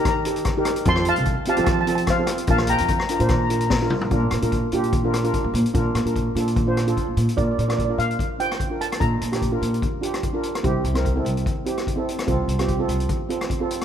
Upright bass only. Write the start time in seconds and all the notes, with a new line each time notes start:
Already playing: D#3
0.86 F2
1.18 C2
1.59 F3
2.48 A#1
2.80 F2
3.20 A#2
4.11 A#2
4.32 A#2
4.42 A#2
4.72 A#2
5.44 A#2
5.54 A#2
5.75 A#2
5.95 A#2
6.05 A#2
6.35 A#2
7.07 A#2
7.17 A#2
7.38 A#2
7.58 A#2
7.98 A#2
9.01 A#2
9.21 A#2
9.62 A#2
10.64 C2
10.84 C2
11.25 C2
12.28 C2
12.48 C2
12.88 C2